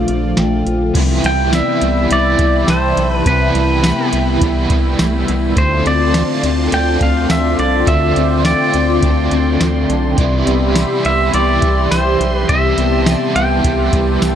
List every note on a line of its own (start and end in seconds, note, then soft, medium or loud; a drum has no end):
0.00 0.93 A#2 medium
0.00 0.95 A#2 medium
0.00 0.93 D3 medium
0.00 0.93 F3 medium
0.00 0.36 A3 medium
0.00 0.93 A3 medium
0.00 0.65 F4 medium
0.00 0.93 F4 medium
0.00 0.63 D5 medium
0.00 0.79 F5 medium
0.08 0.34 A#1 medium
0.08 1.01 D4 medium
0.08 closed hi-hat soft
0.37 0.63 A#1 loud
0.37 1.01 A3 medium
0.37 1.20 G5 medium
0.37 snare medium
0.37 closed hi-hat medium
0.66 0.92 A#1 medium
0.66 1.01 F4 medium
0.66 closed hi-hat soft
0.94 1.21 C2 loud
0.94 1.52 C3 medium
0.94 3.25 C3 medium
0.94 1.50 E3 medium
0.94 1.52 G3 loud
0.94 1.53 B3 medium
0.94 5.53 E4 medium
0.94 1.54 E4 medium
0.94 5.53 E5 medium
0.94 5.53 G5 medium
0.94 5.53 B5 loud
0.94 kick medium
0.94 closed hi-hat medium
0.94 crash medium
1.24 1.62 C2 loud
1.24 1.80 G3 medium
1.24 1.54 G5 loud
1.24 closed hi-hat soft
1.51 2.06 E3 medium
1.51 2.10 G3 medium
1.51 2.68 B3 medium
1.51 2.12 B3 medium
1.51 2.52 D5 medium
1.51 2.13 E5 medium
1.51 snare loud
1.51 closed hi-hat medium
1.51 tambourine medium
1.56 2.12 E4 medium
1.81 2.07 C2 loud
1.81 2.39 G3 medium
1.81 closed hi-hat medium
2.07 2.36 C2 loud
2.07 3.24 E3 medium
2.07 2.96 E4 medium
2.07 closed hi-hat medium
2.11 3.26 G3 medium
2.11 2.71 D5 loud
2.11 3.09 E5 medium
2.18 3.28 E4 medium
2.39 2.65 C2 medium
2.39 3.54 G3 medium
2.39 kick medium
2.39 closed hi-hat medium
2.67 2.94 C2 loud
2.67 3.12 C5 medium
2.67 3.67 A5 medium
2.67 snare loud
2.67 closed hi-hat medium
2.67 tambourine medium
2.97 3.22 B1 loud
2.97 4.40 E4 medium
2.97 closed hi-hat soft
3.12 3.27 B4 medium
3.25 3.51 C2 loud
3.25 3.83 C3 medium
3.25 5.56 C3 medium
3.25 3.81 E3 medium
3.25 3.82 G3 medium
3.25 3.84 B3 medium
3.25 3.85 E4 medium
3.25 4.09 B4 medium
3.25 kick loud
3.25 closed hi-hat medium
3.55 3.93 C2 loud
3.55 4.12 G3 medium
3.55 closed hi-hat medium
3.82 4.37 E3 medium
3.82 4.41 G3 medium
3.82 3.98 A3 medium
3.82 4.42 B3 medium
3.82 4.83 G5 medium
3.82 snare loud
3.82 closed hi-hat medium
3.82 tambourine medium
3.87 4.43 E4 medium
3.98 4.98 B3 medium
4.13 4.38 C2 medium
4.13 4.69 G3 medium
4.13 closed hi-hat medium
4.38 4.67 C2 loud
4.38 5.55 E3 medium
4.38 5.27 E4 medium
4.38 kick medium
4.38 closed hi-hat medium
4.43 5.57 G3 medium
4.43 5.58 B3 medium
4.49 5.58 E4 medium
4.70 4.96 C2 loud
4.70 5.62 G3 medium
4.70 kick medium
4.70 closed hi-hat medium
4.99 5.25 C2 loud
4.99 5.14 A3 medium
4.99 snare loud
4.99 closed hi-hat medium
4.99 tambourine medium
5.14 5.63 B3 medium
5.28 5.54 C2 medium
5.28 5.62 E4 medium
5.28 closed hi-hat soft
5.55 5.82 D2 loud
5.55 6.12 D3 medium
5.55 7.86 D3 medium
5.55 6.13 A3 medium
5.55 6.16 C4 medium
5.55 10.15 F4 medium
5.55 6.15 F4 medium
5.55 5.87 C5 loud
5.55 10.14 D5 medium
5.55 7.85 A5 medium
5.55 14.35 C6 medium
5.55 kick medium
5.55 closed hi-hat medium
5.86 6.24 D2 loud
5.86 6.43 C4 medium
5.86 6.40 D5 loud
5.86 closed hi-hat medium
6.13 6.67 D3 medium
6.13 6.71 A3 medium
6.13 6.75 C4 medium
6.13 7.28 D4 medium
6.13 snare loud
6.13 closed hi-hat medium
6.13 tambourine medium
6.18 6.74 F4 medium
6.43 6.69 D2 loud
6.43 7.01 C4 medium
6.43 closed hi-hat medium
6.68 7.84 D3 medium
6.72 6.98 D2 loud
6.72 7.86 A3 medium
6.72 7.88 C4 medium
6.72 7.57 A4 medium
6.72 7.00 G5 loud
6.72 closed hi-hat medium
6.79 7.88 F4 medium
7.01 7.26 D2 loud
7.01 8.15 C4 medium
7.01 7.29 F5 medium
7.01 kick medium
7.01 closed hi-hat soft
7.30 7.55 D2 loud
7.30 8.44 D4 medium
7.30 7.57 E5 loud
7.30 snare loud
7.30 closed hi-hat medium
7.30 tambourine medium
7.58 7.84 C2 medium
7.58 9.02 A4 medium
7.58 7.87 D5 medium
7.58 closed hi-hat soft
7.85 8.13 D2 loud
7.85 8.42 D3 medium
7.85 10.17 D3 medium
7.85 8.44 A3 medium
7.85 8.46 C4 loud
7.85 8.46 F4 medium
7.85 8.86 D5 medium
7.85 8.45 E5 loud
7.85 10.16 G5 medium
7.85 kick medium
7.85 closed hi-hat medium
8.16 8.55 D2 loud
8.16 8.73 C4 medium
8.16 closed hi-hat soft
8.43 8.98 D3 medium
8.43 9.02 A3 medium
8.43 9.06 C4 medium
8.43 9.43 A4 medium
8.43 9.86 D5 medium
8.43 snare loud
8.43 closed hi-hat medium
8.43 tambourine medium
8.48 9.04 F4 medium
8.74 9.00 D2 medium
8.74 9.31 C4 medium
8.74 closed hi-hat medium
8.99 10.16 D3 medium
8.99 kick medium
8.99 closed hi-hat medium
9.03 9.28 D2 loud
9.03 10.18 A3 medium
9.03 10.19 C4 medium
9.03 9.88 A4 medium
9.10 10.20 F4 medium
9.31 9.57 D2 loud
9.31 10.47 C4 medium
9.31 closed hi-hat soft
9.61 9.86 D2 loud
9.61 10.24 D4 medium
9.61 snare loud
9.61 closed hi-hat medium
9.61 tambourine medium
9.89 10.15 B1 medium
9.89 10.24 A4 medium
9.89 closed hi-hat soft
10.17 10.44 C2 loud
10.17 10.75 C3 medium
10.17 12.48 C3 medium
10.17 10.73 E3 loud
10.17 10.75 G3 medium
10.17 10.77 B3 medium
10.17 10.77 E4 loud
10.17 14.35 G4 medium
10.17 11.17 D5 medium
10.17 14.35 E5 medium
10.17 12.47 B5 medium
10.17 kick medium
10.17 closed hi-hat medium
10.47 10.85 C2 loud
10.47 11.04 B3 medium
10.47 closed hi-hat soft
10.74 11.29 E3 medium
10.74 11.33 G3 medium
10.74 11.35 B3 medium
10.74 11.90 E4 medium
10.74 snare loud
10.74 closed hi-hat medium
10.74 tambourine medium
10.79 11.35 E4 medium
11.05 11.30 C2 medium
11.05 11.63 B3 medium
11.05 11.34 E5 medium
11.05 closed hi-hat medium
11.31 11.59 C2 loud
11.31 12.48 E3 medium
11.31 12.49 G3 medium
11.31 12.19 G4 medium
11.31 11.93 D5 medium
11.31 12.33 G5 medium
11.31 closed hi-hat medium
11.42 12.50 E4 medium
11.53 12.49 D6 medium
11.62 11.88 C2 medium
11.62 kick medium
11.62 closed hi-hat medium
11.73 12.66 E6 soft
11.91 12.17 C2 loud
11.91 13.06 E4 medium
11.91 12.34 C5 medium
11.91 snare medium
11.91 closed hi-hat medium
11.91 tambourine medium
12.20 12.46 B1 medium
12.20 13.63 G4 medium
12.20 closed hi-hat medium
12.34 12.51 B4 medium
12.48 12.74 C2 loud
12.48 13.06 C3 medium
12.48 14.35 C3 medium
12.48 13.04 E3 medium
12.48 13.06 G3 medium
12.48 13.08 B3 medium
12.48 13.08 E4 medium
12.48 13.13 E5 medium
12.48 14.35 A5 medium
12.48 kick medium
12.48 closed hi-hat medium
12.78 13.16 C2 loud
12.78 13.35 B3 medium
12.78 closed hi-hat soft
13.06 13.60 E3 medium
13.06 13.65 G3 medium
13.06 13.66 B3 medium
13.06 14.21 E4 medium
13.06 14.05 E5 medium
13.06 snare loud
13.06 closed hi-hat medium
13.06 tambourine medium
13.11 13.66 E4 medium
13.11 13.35 D5 medium
13.36 13.61 C2 medium
13.36 13.92 B3 medium
13.36 14.35 G5 loud
13.36 closed hi-hat medium
13.62 13.90 C2 loud
13.62 14.35 E3 medium
13.62 14.35 G4 medium
13.62 kick medium
13.62 closed hi-hat medium
13.66 14.35 G3 medium
13.66 14.35 B3 medium
13.73 14.35 E4 medium
13.93 14.18 C2 loud
13.93 14.35 B3 medium
13.93 kick medium
13.93 closed hi-hat medium
14.22 14.35 C2 loud
14.22 14.35 E4 medium
14.22 14.35 G5 medium
14.22 snare loud
14.22 closed hi-hat medium
14.22 tambourine medium